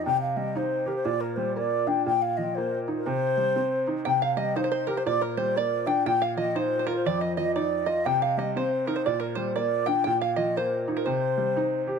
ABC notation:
X:1
M:2/4
L:1/16
Q:"Swing" 1/4=120
K:Cm
V:1 name="Five-string banjo"
z8 | z8 | z8 | z8 |
g f e2 c/2 c/2 c B c | d B c2 d2 g2 | g f e2 c3/2 c/2 B2 | d e e2 d2 e2 |
g f e2 c2 B c | d B c2 d2 g2 | g f e2 c2 z B | c6 z2 |]
V:2 name="Flute"
g f e2 c2 B c | d B c2 d2 g2 | g f e2 c2 z B | c6 z2 |
g f e2 c2 B c | d B c2 d2 g2 | g f e2 c2 B c | d e e2 d2 e2 |
g f e2 c2 B c | d B c2 d2 g2 | g f e2 c2 z B | c6 z2 |]
V:3 name="Upright piano" clef=bass
C,2 G,2 E2 G2 | B,,2 G,2 B,2 D2 | B,,2 F,2 B,2 E2 | C,2 G,2 C2 E2 |
C,2 G,2 E2 G2 | B,,2 G,2 B,2 D2 | B,,2 F,2 E2 F2 | F,,2 F,2 E2 F2 |
C,2 G,2 C2 E2 | B,,2 G,2 B,2 D2 | B,,2 F,2 B,2 E2 | C,2 G,2 E2 G2 |]